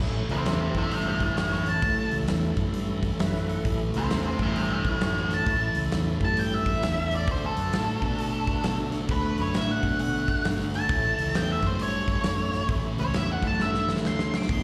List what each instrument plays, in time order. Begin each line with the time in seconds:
0.00 fingered electric bass A1, distorted electric guitar A2 E3 A3, tonewheel organ A3 C#4 E4 A4, kick
0.29 fingered electric bass C#2, tonewheel organ A3 C#4 E4 B4, lead electric guitar G4 E5, open hi-hat
0.44 fingered electric bass E2, tonewheel organ A3 C#4 E4 G4, lead electric guitar G4, snare, open hi-hat
0.48 lead electric guitar E5
0.61 lead electric guitar G4 E5
0.72 fingered electric bass F#2, distorted electric guitar E3 A3, tonewheel organ A3 C#4 E4 A4, kick, open hi-hat
0.77 distorted electric guitar A2, lead electric guitar E5 G5
0.91 fingered electric bass G2, tonewheel organ A3 C#4 E4 A4, lead electric guitar E5 G5, open hi-hat
1.08 lead electric guitar E5 G5
1.20 tonewheel organ A3 C#4 E4 B4, lead electric guitar C#5 A5, kick, open hi-hat
1.36 fingered electric bass F#2, tonewheel organ A3 C#4 E4 A4, lead electric guitar C#5 A5, snare, open hi-hat
1.52 lead electric guitar C#5 A5, snare
1.66 tonewheel organ A3 C#4 E4 B4, lead electric guitar A5, open hi-hat
1.81 fingered electric bass A1, distorted electric guitar A2 E3 A3, tonewheel organ A3 C#4 E4 A4, kick, open hi-hat
2.09 fingered electric bass C#2, tonewheel organ A3 C#4 E4 A4, open hi-hat
2.26 fingered electric bass E2, tonewheel organ A3 C#4 E4 A4, snare, open hi-hat
2.56 fingered electric bass F#2, distorted electric guitar A2 E3 A3, tonewheel organ A3 C#4 E4 A4, kick, open hi-hat
2.71 fingered electric bass G2, tonewheel organ A3 C#4 E4 A4, open hi-hat
3.03 tonewheel organ A3 C#4 E4 A4, kick, open hi-hat
3.19 fingered electric bass F#2, tonewheel organ A3 C#4 E4 B4 E5, snare, open hi-hat
3.35 snare
3.46 tonewheel organ A3 C#4 E4 A4 F#5, open hi-hat
3.64 fingered electric bass A1, distorted electric guitar A2 E3 A3, tonewheel organ A3 C#4 E4 A4, kick, open hi-hat
3.93 fingered electric bass C#2, tonewheel organ A3 C#4 E4 A4, lead electric guitar G4, open hi-hat
3.98 lead electric guitar E5
4.10 fingered electric bass E2, tonewheel organ A3 C#4 E4 A4, lead electric guitar G4 E5, snare, open hi-hat
4.27 lead electric guitar G4 E5
4.38 fingered electric bass F#2, distorted electric guitar A2 E3 A3, tonewheel organ A3 C#4 E4 A4, kick, open hi-hat
4.42 lead electric guitar E5 G5
4.54 fingered electric bass G2, tonewheel organ A3 C#4 E4 A4, lead electric guitar E5 G5, open hi-hat
4.73 lead electric guitar E5 G5
4.84 tonewheel organ A3 C#4 E4 B4, kick, open hi-hat
4.88 lead electric guitar C#5 A5
5.00 fingered electric bass F#2, tonewheel organ A3 C#4 E4 F#4, lead electric guitar C#5 A5, snare, open hi-hat
5.17 lead electric guitar C#5 A5, snare
5.30 tonewheel organ A3 C#4 E4 A4, snare, open hi-hat
5.34 lead electric guitar A5
5.44 fingered electric bass A1, distorted electric guitar A2 E3, tonewheel organ A3 C#4 E4 A4, kick, open hi-hat
5.48 distorted electric guitar A3
5.75 fingered electric bass C#2, tonewheel organ A3 C#4 E4 A4, open hi-hat
5.92 fingered electric bass E2, tonewheel organ A3 C#4 E4 A4, snare, open hi-hat
6.20 fingered electric bass F#2, distorted electric guitar A2 E3 A3, tonewheel organ A3 C#4 E4 A4, kick, open hi-hat
6.24 lead electric guitar A5
6.37 fingered electric bass G2, tonewheel organ A3 C#4 E4 A4, lead electric guitar G5, open hi-hat
6.54 lead electric guitar E5
6.66 tonewheel organ A3 C#4 E4 A4, kick, open hi-hat
6.82 fingered electric bass E2, tonewheel organ A3 C#4 E4 A4, snare, open hi-hat
7.11 tonewheel organ A3 C#4 E4 A4, lead electric guitar D5, open hi-hat
7.27 fingered electric bass D2, distorted electric guitar D3 A3 D4, tonewheel organ A3 D4 F#4 A4, lead electric guitar C5, kick, open hi-hat
7.46 lead electric guitar A4
7.57 fingered electric bass F#2, tonewheel organ A3 D4 F#4 B4, open hi-hat
7.73 fingered electric bass A2, tonewheel organ A3 D4 F#4 A4, snare, open hi-hat
8.02 fingered electric bass B2, distorted electric guitar D3 A3 D4, tonewheel organ A3 D4 F#4 B4, kick, open hi-hat
8.17 fingered electric bass B2, tonewheel organ A3 D4 F#4 A4, open hi-hat
8.46 tonewheel organ A3 D4 F#4 B4, kick, open hi-hat
8.62 fingered electric bass B2, tonewheel organ A3 D4 F#4 A4, snare, open hi-hat
8.89 tonewheel organ A3 D4 F#4 A4, open hi-hat
8.93 snare
9.05 fingered electric bass D2, distorted electric guitar D3, tonewheel organ A3 D4 F#4 A4, kick, open hi-hat
9.10 distorted electric guitar A3 D4, lead electric guitar B4
9.36 fingered electric bass F#2, tonewheel organ A3 D4 F#4 A4, open hi-hat
9.41 lead electric guitar C#5
9.51 fingered electric bass A2, tonewheel organ A3 D4 F#4 B4, snare, open hi-hat
9.57 lead electric guitar E5
9.71 lead electric guitar F#5
9.80 fingered electric bass B2, tonewheel organ A3 D4 F#4 A4, distorted electric guitar A3 D4, kick, open hi-hat
9.85 distorted electric guitar D3
9.97 fingered electric bass B2, tonewheel organ A3 D4 F#4 A4, lead electric guitar F#5, open hi-hat
10.26 tonewheel organ A3 D4 F#4 A4, kick, open hi-hat
10.43 fingered electric bass G1, tonewheel organ A3 D4 F#4 A4, snare, open hi-hat
10.60 snare
10.70 tonewheel organ A3 D4 F#4 A4, open hi-hat
10.75 lead electric guitar A5
10.89 fingered electric bass A1, distorted electric guitar A2 E3 A3, tonewheel organ A3 C#4 E4 A4, kick, open hi-hat
11.18 fingered electric bass C#2, tonewheel organ A3 C#4 E4 A4, open hi-hat
11.34 fingered electric bass E2, tonewheel organ A3 C#4 E4 A4, lead electric guitar G5, snare, open hi-hat
11.52 lead electric guitar E5
11.61 fingered electric bass F#2, distorted electric guitar A2 E3 A3, tonewheel organ A3 C#4 E4 G4, kick, open hi-hat
11.67 lead electric guitar C5
11.79 fingered electric bass G2, tonewheel organ A3 C#4 E4 F#4, lead electric guitar C#5, open hi-hat
12.08 tonewheel organ A3 C#4 E4 A4, kick, open hi-hat
12.24 fingered electric bass F#2, tonewheel organ A3 C#4 E4 A4, snare, open hi-hat
12.52 tonewheel organ A3 C#4 E4 F#4, snare, open hi-hat
12.67 fingered electric bass A1, distorted electric guitar A2 E3 A3, tonewheel organ A3 C#4 E4 A4, kick, open hi-hat
12.96 fingered electric bass C#2, tonewheel organ A3 C#4 E4 A4, open hi-hat
13.00 lead electric guitar C#5
13.13 fingered electric bass E2, tonewheel organ A3 C#4 E4 A4, lead electric guitar E5, snare, open hi-hat
13.32 lead electric guitar F#5
13.41 fingered electric bass F#2, distorted electric guitar E3 A3, tonewheel organ A3 C#4 E4 A4, kick, open hi-hat
13.45 distorted electric guitar A2, lead electric guitar A5
13.58 fingered electric bass G2, tonewheel organ A3 C#4 E4 A4, lead electric guitar E5, snare
13.74 snare
13.87 tonewheel organ A3 C#4 E4 B4, snare
13.96 snare
14.02 fingered electric bass D2, tonewheel organ A3 C#4 E4 A4, snare
14.07 lead electric guitar C6
14.19 snare
14.30 tonewheel organ A3 C#4 E4 A4, snare
14.37 lead electric guitar D6
14.42 snare
14.47 fingered electric bass E1, distorted electric guitar E2 B2, tonewheel organ G#3 B3 E4 G#4, kick, open hi-hat
14.51 distorted electric guitar E3, lead electric guitar C6